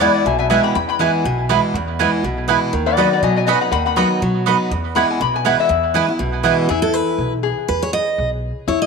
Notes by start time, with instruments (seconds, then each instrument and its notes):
Already playing: steel-string acoustic guitar E2
0.00 steel-string acoustic guitar E3 G#3 B3 E4, mandolin B3 E4 B4 G#5, resonator guitar played with a steel bar D5 F#5
0.14 resonator guitar played with a steel bar D5 F#5
0.25 upright bass B1, steel-string acoustic guitar B2, resonator guitar played with a steel bar E5 G#5
0.39 resonator guitar played with a steel bar E5 G#5
0.50 steel-string acoustic guitar E3 G#3 B3 E4, mandolin B3 E4 B4 G#5, resonator guitar played with a steel bar E5 G#5
0.63 resonator guitar played with a steel bar G5 B5
0.75 upright bass E2, steel-string acoustic guitar E2, resonator guitar played with a steel bar G5 B5
0.89 resonator guitar played with a steel bar G5 B5
0.99 steel-string acoustic guitar E3 G#3 B3 E4, mandolin B3 E4 B4 G#5, resonator guitar played with a steel bar G#5
1.25 upright bass B1, steel-string acoustic guitar B2
1.49 steel-string acoustic guitar E3 G#3 B3 E4, mandolin B3 E4 B4 G#5
1.74 upright bass E2, steel-string acoustic guitar E2
1.99 steel-string acoustic guitar E3 G#3 B3 E4, mandolin B3 E4 B4 G#5
2.24 upright bass B1, steel-string acoustic guitar B2
2.48 steel-string acoustic guitar E3 G#3 B3 E4, mandolin B3 E4 B4 G#5
2.73 upright bass D#2, steel-string acoustic guitar D#3
2.86 resonator guitar played with a steel bar D5 F#5
2.97 steel-string acoustic guitar F#3 B3 D#4 B4, mandolin B3 F#4 D#5 B5, resonator guitar played with a steel bar D5 F#5
3.13 resonator guitar played with a steel bar D5 F#5
3.22 upright bass B2, steel-string acoustic guitar F#3, resonator guitar played with a steel bar D#5 G#5
3.36 resonator guitar played with a steel bar D#5 G#5
3.47 steel-string acoustic guitar F#3 B3 D#4 B4, mandolin B3 F#4 D#5 B5, resonator guitar played with a steel bar D#5 G#5
3.61 resonator guitar played with a steel bar F#5 B5
3.71 upright bass D#2, steel-string acoustic guitar D#3, resonator guitar played with a steel bar F#5 B5
3.86 resonator guitar played with a steel bar F#5 B5
3.96 steel-string acoustic guitar F#3 B3 D#4 B4, mandolin B3 F#4 D#5 B5, resonator guitar played with a steel bar B5
4.22 upright bass B2, steel-string acoustic guitar F#3
4.46 steel-string acoustic guitar F#3 B3 D#4 B4, mandolin B3 F#4 D#5 B5
4.71 upright bass E2, steel-string acoustic guitar E2
4.95 steel-string acoustic guitar E3 G#3 B3 E4, mandolin B3 E4 B4 G#5, resonator guitar played with a steel bar B5
5.10 resonator guitar played with a steel bar G#5
5.20 upright bass B1, steel-string acoustic guitar B2, resonator guitar played with a steel bar B5
5.36 resonator guitar played with a steel bar G#5
5.45 steel-string acoustic guitar E3 G#3 B3 E4, mandolin B3 E4 B4 G#5, resonator guitar played with a steel bar F#5
5.60 resonator guitar played with a steel bar E5
5.69 steel-string acoustic guitar E2, upright bass E2
5.94 steel-string acoustic guitar E3 G#3 B3 E4, mandolin B3 E4 B4 G#5
6.09 steel-string acoustic guitar B3 E4
6.19 upright bass B1, steel-string acoustic guitar B2
6.43 steel-string acoustic guitar E3 G#3 B3 E4, mandolin B3 E4 B4 G#5
6.69 upright bass E2, resonator guitar played with a steel bar E4, steel-string acoustic guitar G#4
6.82 steel-string acoustic guitar A4
6.93 steel-string acoustic guitar B4
7.18 upright bass B1
7.43 resonator guitar played with a steel bar G#4
7.68 upright bass E2, steel-string acoustic guitar B4
7.83 steel-string acoustic guitar C#5
7.93 steel-string acoustic guitar D#5
8.18 upright bass B1
8.68 upright bass E2, resonator guitar played with a steel bar E4, steel-string acoustic guitar C#5
8.82 steel-string acoustic guitar D#5